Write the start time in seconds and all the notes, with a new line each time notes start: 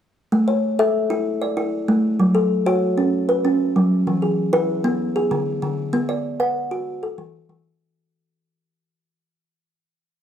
0.32 A3
0.48 C#5
0.79 A4 E5
1.10 E4
1.42 D5
1.57 E4
1.88 A3
2.20 F#3
2.35 A4
2.66 F#4 C#5
2.98 C#4
3.29 B4
3.45 C#4
3.76 F#3
4.07 E3
4.22 G#4
4.53 E4 B4
4.84 B3
5.16 G#4
5.31 D3
5.62 D3
5.93 B3
6.09 D5
6.40 B4 F#5
6.71 F#4
7.03 A4
7.18 E3
7.49 E3